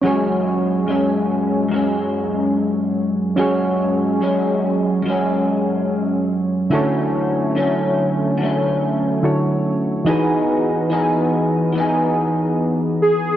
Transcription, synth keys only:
0.02 3.33 C#4 medium
0.02 3.34 F#4 medium
0.02 3.35 G#4 medium
0.07 3.36 C#5 medium
3.36 6.68 C#4 medium
3.36 6.69 F#4 medium
3.36 6.69 G#4 medium
3.41 6.70 C#5 medium
6.70 9.18 D3 medium
6.70 9.19 E4 medium
6.70 9.19 F#4 medium
6.70 9.20 A4 medium
6.75 9.21 C#5 medium
9.22 10.07 D3 soft
9.22 10.07 E4 soft
9.22 10.06 F#4 soft
9.22 10.08 A4 soft
9.22 10.08 C#5 soft
10.05 13.37 E3 medium
10.05 13.37 D#4 medium
10.05 13.37 F#4 medium
10.09 13.37 G#4 medium
10.09 13.37 B4 medium

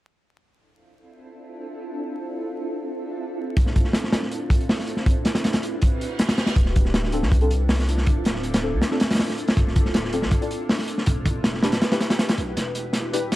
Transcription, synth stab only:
7.13 7.22 C4 medium
7.13 7.22 D4 medium
7.13 7.22 F4 medium
7.13 7.22 A4 medium
7.41 7.50 C4 medium
7.41 7.50 D4 medium
7.41 7.50 F4 medium
7.41 7.50 A4 medium
8.63 8.72 C4 medium
8.63 8.72 D4 medium
8.63 8.72 F4 medium
8.63 8.72 A4 medium
8.91 9.00 C4 medium
8.91 9.00 D4 medium
8.91 9.00 F4 medium
8.91 9.00 A4 medium
10.13 10.22 C4 medium
10.13 10.22 D4 medium
10.13 10.22 F4 medium
10.13 10.22 A4 medium
10.41 10.50 C4 medium
10.41 10.50 D4 medium
10.41 10.50 F4 medium
10.41 10.50 A4 medium
11.63 11.72 D4 medium
11.63 11.72 E4 medium
11.63 11.72 G4 medium
11.63 11.72 B4 medium
11.91 12.00 D4 medium
11.91 12.00 E4 medium
11.91 12.00 G4 medium
11.91 12.00 B4 medium
13.13 13.22 D4 medium
13.13 13.22 E4 medium
13.13 13.22 G4 medium
13.13 13.22 B4 medium

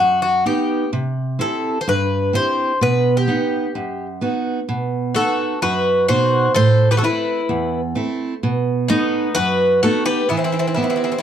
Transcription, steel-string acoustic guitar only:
0.00 0.44 F#2 medium
0.46 0.83 B3 soft
0.46 0.83 D#4 soft
0.46 0.84 F#5 soft
0.93 1.38 C3 medium
1.39 1.77 C4 soft
1.39 1.77 E4 soft
1.39 1.77 G4 soft
1.88 2.33 G2 medium
2.33 2.71 C4 soft
2.33 2.72 E4 soft
2.33 2.72 G4 soft
2.81 3.26 B2 medium
3.27 3.65 B3 soft
3.27 3.65 D#4 soft
3.27 3.66 F#5 medium
3.75 4.20 F#2 medium
4.21 4.59 B3 soft
4.21 4.59 D#4 soft
4.21 4.59 F#4 soft
4.69 5.14 B2 medium
5.15 5.53 B3 soft
5.15 5.53 D#4 soft
5.15 5.53 F#4 soft
5.62 6.08 F#2 medium
6.09 6.47 B2 soft
6.09 6.47 D#4 soft
6.09 6.47 F#4 soft
6.56 7.01 A2 medium
7.03 7.40 A3 soft
7.03 7.40 C4 soft
7.03 7.41 E4 medium
7.49 7.95 E2 medium
7.95 8.33 A3 medium
7.95 8.33 C4 soft
7.95 8.33 E4 soft
8.43 8.88 B2 medium
8.90 9.27 A3 soft
8.90 9.27 B3 soft
8.90 9.27 D#4 medium
9.37 9.82 F#2 medium
9.83 10.21 A3 soft
9.83 10.21 B3 soft
9.83 10.21 D#4 medium
10.31 10.76 E3 medium
10.77 11.14 B3 soft
10.77 11.14 E4 soft
10.77 11.15 G4 soft

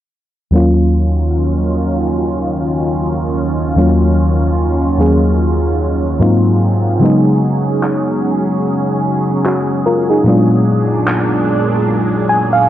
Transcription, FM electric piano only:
0.51 3.72 D#2 medium
0.51 3.73 F#3 medium
0.51 3.74 A#3 medium
0.51 3.74 C#4 medium
0.56 3.75 F4 medium
3.76 4.97 D#2 medium
3.76 4.98 F#3 medium
3.76 4.98 A#3 medium
3.76 4.99 C#4 medium
3.76 5.00 F4 medium
4.98 6.20 D#2 medium
4.98 6.19 F#3 soft
4.98 6.19 A#3 soft
4.98 6.21 C#4 soft
4.98 6.22 G#4 medium
6.20 7.01 G#2 medium
6.20 7.00 F#3 medium
6.20 7.02 A#3 medium
6.20 7.02 C4 medium
6.20 7.02 D#4 medium
6.20 7.03 F4 medium
6.99 10.21 C#3 medium
6.99 10.22 F#3 medium
6.99 10.22 G#3 medium
6.99 10.23 B3 medium
7.05 9.42 D#4 medium
9.46 9.84 C#4 soft
9.46 9.84 F#4 medium
9.86 10.08 F4 medium
9.86 10.08 A#4 medium
10.10 10.48 D#4 soft
10.10 10.48 G#4 medium
10.24 12.64 A#2 medium
10.24 12.65 F#3 medium
10.24 12.65 G#3 medium
10.24 12.66 B3 medium
10.28 12.66 D4 medium
10.28 12.67 F4 medium
12.29 12.51 G#5 medium
12.53 12.68 F5 medium

